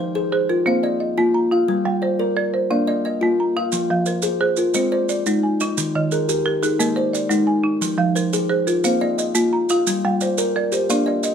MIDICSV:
0, 0, Header, 1, 4, 480
1, 0, Start_track
1, 0, Tempo, 340909
1, 2368, Time_signature, 12, 3, 24, 8
1, 15974, End_track
2, 0, Start_track
2, 0, Title_t, "Kalimba"
2, 0, Program_c, 0, 108
2, 0, Note_on_c, 0, 72, 70
2, 197, Note_off_c, 0, 72, 0
2, 213, Note_on_c, 0, 72, 65
2, 216, Note_on_c, 0, 68, 74
2, 693, Note_off_c, 0, 68, 0
2, 698, Note_on_c, 0, 65, 68
2, 931, Note_off_c, 0, 72, 0
2, 942, Note_on_c, 0, 58, 76
2, 945, Note_on_c, 0, 77, 61
2, 1174, Note_off_c, 0, 65, 0
2, 1177, Note_on_c, 0, 75, 66
2, 1415, Note_off_c, 0, 58, 0
2, 1655, Note_on_c, 0, 65, 86
2, 1657, Note_off_c, 0, 77, 0
2, 1892, Note_off_c, 0, 75, 0
2, 2132, Note_off_c, 0, 65, 0
2, 2141, Note_on_c, 0, 77, 63
2, 2371, Note_on_c, 0, 55, 89
2, 2614, Note_off_c, 0, 77, 0
2, 2842, Note_on_c, 0, 74, 65
2, 2849, Note_off_c, 0, 55, 0
2, 3073, Note_off_c, 0, 74, 0
2, 3089, Note_on_c, 0, 70, 73
2, 3090, Note_on_c, 0, 74, 65
2, 3568, Note_off_c, 0, 70, 0
2, 3808, Note_off_c, 0, 74, 0
2, 3810, Note_on_c, 0, 77, 64
2, 3813, Note_on_c, 0, 58, 80
2, 4047, Note_on_c, 0, 75, 72
2, 4277, Note_off_c, 0, 75, 0
2, 4289, Note_off_c, 0, 58, 0
2, 4294, Note_on_c, 0, 75, 67
2, 4523, Note_on_c, 0, 65, 80
2, 4527, Note_off_c, 0, 77, 0
2, 5004, Note_off_c, 0, 65, 0
2, 5009, Note_off_c, 0, 75, 0
2, 5022, Note_on_c, 0, 77, 66
2, 5246, Note_on_c, 0, 53, 87
2, 5493, Note_off_c, 0, 77, 0
2, 5719, Note_on_c, 0, 72, 65
2, 5725, Note_off_c, 0, 53, 0
2, 5943, Note_off_c, 0, 72, 0
2, 5955, Note_on_c, 0, 68, 75
2, 5960, Note_on_c, 0, 72, 67
2, 6439, Note_off_c, 0, 68, 0
2, 6443, Note_on_c, 0, 65, 62
2, 6678, Note_on_c, 0, 75, 66
2, 6682, Note_off_c, 0, 72, 0
2, 6682, Note_on_c, 0, 56, 81
2, 6924, Note_off_c, 0, 65, 0
2, 6929, Note_on_c, 0, 74, 74
2, 7151, Note_off_c, 0, 74, 0
2, 7163, Note_off_c, 0, 56, 0
2, 7168, Note_on_c, 0, 74, 64
2, 7401, Note_off_c, 0, 75, 0
2, 7411, Note_on_c, 0, 63, 77
2, 7886, Note_off_c, 0, 74, 0
2, 7888, Note_off_c, 0, 63, 0
2, 7897, Note_on_c, 0, 75, 64
2, 8132, Note_on_c, 0, 51, 93
2, 8371, Note_off_c, 0, 75, 0
2, 8608, Note_off_c, 0, 51, 0
2, 8618, Note_on_c, 0, 70, 63
2, 8838, Note_off_c, 0, 70, 0
2, 8853, Note_on_c, 0, 67, 69
2, 8854, Note_on_c, 0, 70, 65
2, 9326, Note_on_c, 0, 63, 67
2, 9329, Note_off_c, 0, 67, 0
2, 9570, Note_off_c, 0, 70, 0
2, 9571, Note_on_c, 0, 75, 70
2, 9578, Note_on_c, 0, 56, 74
2, 9805, Note_off_c, 0, 63, 0
2, 9814, Note_on_c, 0, 74, 69
2, 10041, Note_off_c, 0, 74, 0
2, 10051, Note_off_c, 0, 56, 0
2, 10058, Note_on_c, 0, 74, 60
2, 10283, Note_on_c, 0, 63, 86
2, 10288, Note_off_c, 0, 75, 0
2, 10764, Note_off_c, 0, 63, 0
2, 10772, Note_off_c, 0, 74, 0
2, 11001, Note_on_c, 0, 53, 87
2, 11481, Note_on_c, 0, 72, 68
2, 11484, Note_off_c, 0, 53, 0
2, 11711, Note_off_c, 0, 72, 0
2, 11728, Note_on_c, 0, 72, 64
2, 11733, Note_on_c, 0, 68, 75
2, 12208, Note_on_c, 0, 65, 66
2, 12210, Note_off_c, 0, 68, 0
2, 12448, Note_off_c, 0, 72, 0
2, 12452, Note_on_c, 0, 58, 78
2, 12454, Note_on_c, 0, 77, 73
2, 12688, Note_off_c, 0, 65, 0
2, 12690, Note_on_c, 0, 75, 74
2, 12910, Note_off_c, 0, 75, 0
2, 12927, Note_on_c, 0, 75, 61
2, 12931, Note_off_c, 0, 58, 0
2, 13166, Note_on_c, 0, 65, 77
2, 13172, Note_off_c, 0, 77, 0
2, 13648, Note_off_c, 0, 65, 0
2, 13648, Note_off_c, 0, 75, 0
2, 13658, Note_on_c, 0, 77, 67
2, 13897, Note_on_c, 0, 55, 91
2, 14134, Note_off_c, 0, 77, 0
2, 14374, Note_off_c, 0, 55, 0
2, 14381, Note_on_c, 0, 74, 67
2, 14603, Note_off_c, 0, 74, 0
2, 14616, Note_on_c, 0, 70, 79
2, 14619, Note_on_c, 0, 74, 61
2, 15093, Note_on_c, 0, 67, 64
2, 15094, Note_off_c, 0, 70, 0
2, 15336, Note_off_c, 0, 74, 0
2, 15342, Note_on_c, 0, 77, 69
2, 15343, Note_on_c, 0, 58, 79
2, 15572, Note_on_c, 0, 75, 72
2, 15573, Note_off_c, 0, 67, 0
2, 15802, Note_off_c, 0, 75, 0
2, 15818, Note_off_c, 0, 58, 0
2, 15819, Note_on_c, 0, 75, 64
2, 15974, Note_off_c, 0, 75, 0
2, 15974, Note_off_c, 0, 77, 0
2, 15974, End_track
3, 0, Start_track
3, 0, Title_t, "Marimba"
3, 0, Program_c, 1, 12
3, 0, Note_on_c, 1, 53, 86
3, 0, Note_on_c, 1, 77, 72
3, 215, Note_off_c, 1, 53, 0
3, 453, Note_off_c, 1, 77, 0
3, 455, Note_on_c, 1, 72, 69
3, 457, Note_on_c, 1, 68, 85
3, 696, Note_on_c, 1, 70, 65
3, 914, Note_off_c, 1, 72, 0
3, 928, Note_on_c, 1, 60, 81
3, 931, Note_on_c, 1, 72, 65
3, 933, Note_off_c, 1, 68, 0
3, 1168, Note_off_c, 1, 60, 0
3, 1171, Note_on_c, 1, 74, 69
3, 1410, Note_off_c, 1, 72, 0
3, 1412, Note_off_c, 1, 70, 0
3, 1412, Note_on_c, 1, 75, 59
3, 1661, Note_on_c, 1, 58, 80
3, 1890, Note_off_c, 1, 74, 0
3, 1893, Note_on_c, 1, 82, 67
3, 2130, Note_off_c, 1, 75, 0
3, 2132, Note_on_c, 1, 65, 74
3, 2135, Note_off_c, 1, 58, 0
3, 2609, Note_off_c, 1, 65, 0
3, 2610, Note_off_c, 1, 82, 0
3, 2610, Note_on_c, 1, 55, 79
3, 2612, Note_on_c, 1, 79, 67
3, 2853, Note_on_c, 1, 72, 69
3, 3088, Note_off_c, 1, 55, 0
3, 3329, Note_off_c, 1, 79, 0
3, 3330, Note_on_c, 1, 74, 69
3, 3333, Note_on_c, 1, 70, 83
3, 3555, Note_off_c, 1, 72, 0
3, 3572, Note_on_c, 1, 72, 72
3, 3796, Note_off_c, 1, 74, 0
3, 3809, Note_off_c, 1, 70, 0
3, 3809, Note_on_c, 1, 62, 71
3, 3813, Note_on_c, 1, 74, 66
3, 4040, Note_off_c, 1, 74, 0
3, 4048, Note_off_c, 1, 62, 0
3, 4057, Note_on_c, 1, 74, 68
3, 4288, Note_off_c, 1, 72, 0
3, 4309, Note_on_c, 1, 75, 58
3, 4545, Note_on_c, 1, 58, 76
3, 4771, Note_off_c, 1, 74, 0
3, 4787, Note_on_c, 1, 82, 62
3, 5015, Note_off_c, 1, 58, 0
3, 5017, Note_off_c, 1, 75, 0
3, 5021, Note_on_c, 1, 65, 73
3, 5493, Note_off_c, 1, 65, 0
3, 5496, Note_off_c, 1, 82, 0
3, 5496, Note_on_c, 1, 53, 84
3, 5502, Note_on_c, 1, 77, 68
3, 5734, Note_on_c, 1, 70, 67
3, 5970, Note_off_c, 1, 53, 0
3, 6204, Note_on_c, 1, 72, 71
3, 6206, Note_on_c, 1, 68, 86
3, 6213, Note_off_c, 1, 77, 0
3, 6438, Note_off_c, 1, 70, 0
3, 6455, Note_on_c, 1, 70, 62
3, 6676, Note_off_c, 1, 72, 0
3, 6685, Note_off_c, 1, 68, 0
3, 6693, Note_on_c, 1, 60, 77
3, 6693, Note_on_c, 1, 72, 63
3, 6910, Note_off_c, 1, 72, 0
3, 6927, Note_on_c, 1, 72, 68
3, 6928, Note_off_c, 1, 60, 0
3, 7169, Note_off_c, 1, 70, 0
3, 7169, Note_on_c, 1, 74, 67
3, 7414, Note_on_c, 1, 56, 84
3, 7645, Note_off_c, 1, 72, 0
3, 7651, Note_on_c, 1, 80, 56
3, 7886, Note_off_c, 1, 74, 0
3, 7889, Note_off_c, 1, 56, 0
3, 7903, Note_on_c, 1, 63, 76
3, 8367, Note_off_c, 1, 80, 0
3, 8374, Note_off_c, 1, 63, 0
3, 8384, Note_on_c, 1, 51, 81
3, 8386, Note_on_c, 1, 75, 70
3, 8617, Note_on_c, 1, 68, 66
3, 8854, Note_off_c, 1, 51, 0
3, 9089, Note_on_c, 1, 70, 68
3, 9091, Note_on_c, 1, 67, 85
3, 9095, Note_off_c, 1, 75, 0
3, 9314, Note_off_c, 1, 68, 0
3, 9331, Note_on_c, 1, 68, 73
3, 9555, Note_off_c, 1, 70, 0
3, 9567, Note_on_c, 1, 58, 79
3, 9568, Note_off_c, 1, 67, 0
3, 9572, Note_on_c, 1, 70, 72
3, 9801, Note_on_c, 1, 72, 72
3, 9806, Note_off_c, 1, 58, 0
3, 10045, Note_on_c, 1, 74, 68
3, 10048, Note_off_c, 1, 68, 0
3, 10048, Note_off_c, 1, 70, 0
3, 10271, Note_on_c, 1, 56, 85
3, 10518, Note_on_c, 1, 80, 62
3, 10523, Note_off_c, 1, 72, 0
3, 10751, Note_on_c, 1, 63, 71
3, 10758, Note_off_c, 1, 56, 0
3, 10766, Note_off_c, 1, 74, 0
3, 11233, Note_on_c, 1, 53, 91
3, 11238, Note_on_c, 1, 77, 74
3, 11239, Note_off_c, 1, 63, 0
3, 11242, Note_off_c, 1, 80, 0
3, 11488, Note_on_c, 1, 70, 62
3, 11720, Note_off_c, 1, 53, 0
3, 11961, Note_on_c, 1, 68, 85
3, 11961, Note_on_c, 1, 72, 68
3, 11963, Note_off_c, 1, 77, 0
3, 12191, Note_off_c, 1, 70, 0
3, 12208, Note_on_c, 1, 70, 65
3, 12433, Note_off_c, 1, 72, 0
3, 12444, Note_off_c, 1, 68, 0
3, 12450, Note_on_c, 1, 72, 68
3, 12451, Note_on_c, 1, 60, 75
3, 12689, Note_off_c, 1, 60, 0
3, 12694, Note_on_c, 1, 74, 68
3, 12928, Note_off_c, 1, 70, 0
3, 12929, Note_off_c, 1, 72, 0
3, 12931, Note_on_c, 1, 75, 56
3, 13163, Note_on_c, 1, 58, 82
3, 13412, Note_off_c, 1, 74, 0
3, 13415, Note_on_c, 1, 82, 67
3, 13646, Note_off_c, 1, 58, 0
3, 13650, Note_off_c, 1, 75, 0
3, 13665, Note_on_c, 1, 65, 81
3, 14133, Note_off_c, 1, 82, 0
3, 14138, Note_off_c, 1, 65, 0
3, 14146, Note_on_c, 1, 55, 89
3, 14147, Note_on_c, 1, 79, 72
3, 14393, Note_on_c, 1, 72, 66
3, 14619, Note_off_c, 1, 55, 0
3, 14859, Note_off_c, 1, 79, 0
3, 14868, Note_on_c, 1, 70, 86
3, 14875, Note_on_c, 1, 74, 76
3, 15099, Note_off_c, 1, 72, 0
3, 15116, Note_on_c, 1, 72, 67
3, 15335, Note_off_c, 1, 74, 0
3, 15340, Note_off_c, 1, 70, 0
3, 15351, Note_on_c, 1, 74, 62
3, 15353, Note_on_c, 1, 62, 79
3, 15576, Note_off_c, 1, 74, 0
3, 15583, Note_off_c, 1, 62, 0
3, 15593, Note_on_c, 1, 74, 69
3, 15825, Note_off_c, 1, 72, 0
3, 15828, Note_on_c, 1, 75, 67
3, 15974, Note_off_c, 1, 74, 0
3, 15974, Note_off_c, 1, 75, 0
3, 15974, End_track
4, 0, Start_track
4, 0, Title_t, "Drums"
4, 5238, Note_on_c, 9, 70, 69
4, 5379, Note_off_c, 9, 70, 0
4, 5714, Note_on_c, 9, 70, 58
4, 5854, Note_off_c, 9, 70, 0
4, 5944, Note_on_c, 9, 70, 67
4, 6085, Note_off_c, 9, 70, 0
4, 6427, Note_on_c, 9, 70, 58
4, 6568, Note_off_c, 9, 70, 0
4, 6675, Note_on_c, 9, 70, 72
4, 6816, Note_off_c, 9, 70, 0
4, 7166, Note_on_c, 9, 70, 57
4, 7306, Note_off_c, 9, 70, 0
4, 7409, Note_on_c, 9, 70, 75
4, 7550, Note_off_c, 9, 70, 0
4, 7889, Note_on_c, 9, 70, 60
4, 8030, Note_off_c, 9, 70, 0
4, 8132, Note_on_c, 9, 70, 80
4, 8273, Note_off_c, 9, 70, 0
4, 8610, Note_on_c, 9, 70, 57
4, 8751, Note_off_c, 9, 70, 0
4, 8855, Note_on_c, 9, 70, 70
4, 8996, Note_off_c, 9, 70, 0
4, 9336, Note_on_c, 9, 70, 56
4, 9477, Note_off_c, 9, 70, 0
4, 9577, Note_on_c, 9, 70, 80
4, 9718, Note_off_c, 9, 70, 0
4, 10061, Note_on_c, 9, 70, 58
4, 10202, Note_off_c, 9, 70, 0
4, 10289, Note_on_c, 9, 70, 75
4, 10430, Note_off_c, 9, 70, 0
4, 11008, Note_on_c, 9, 70, 73
4, 11148, Note_off_c, 9, 70, 0
4, 11492, Note_on_c, 9, 70, 60
4, 11633, Note_off_c, 9, 70, 0
4, 11731, Note_on_c, 9, 70, 67
4, 11872, Note_off_c, 9, 70, 0
4, 12212, Note_on_c, 9, 70, 60
4, 12353, Note_off_c, 9, 70, 0
4, 12447, Note_on_c, 9, 70, 77
4, 12587, Note_off_c, 9, 70, 0
4, 12933, Note_on_c, 9, 70, 66
4, 13074, Note_off_c, 9, 70, 0
4, 13165, Note_on_c, 9, 70, 83
4, 13306, Note_off_c, 9, 70, 0
4, 13648, Note_on_c, 9, 70, 69
4, 13789, Note_off_c, 9, 70, 0
4, 13895, Note_on_c, 9, 70, 87
4, 14035, Note_off_c, 9, 70, 0
4, 14371, Note_on_c, 9, 70, 64
4, 14512, Note_off_c, 9, 70, 0
4, 14613, Note_on_c, 9, 70, 73
4, 14754, Note_off_c, 9, 70, 0
4, 15094, Note_on_c, 9, 70, 62
4, 15235, Note_off_c, 9, 70, 0
4, 15346, Note_on_c, 9, 70, 71
4, 15486, Note_off_c, 9, 70, 0
4, 15815, Note_on_c, 9, 70, 62
4, 15956, Note_off_c, 9, 70, 0
4, 15974, End_track
0, 0, End_of_file